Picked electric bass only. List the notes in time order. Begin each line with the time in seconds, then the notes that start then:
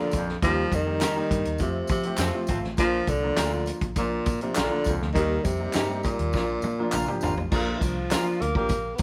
0.14 A#1
0.43 D#2
0.72 F2
1.31 G2
1.46 D#2
1.60 F2
1.90 F3
2.18 F2
2.49 G#1
2.64 A1
2.78 A#1
3.08 C2
3.38 D2
3.82 A#1
3.96 A#1
4.27 A#2
4.58 A#1
4.87 C#2
5.01 D2
5.16 D#2
5.45 F2
5.76 G2
6.20 D#2
6.34 A#1
6.63 A#2
6.94 A#1
7.24 G#1
7.37 A1
7.52 A#1
7.81 C2
8.42 D2
8.56 A#1
8.70 A#1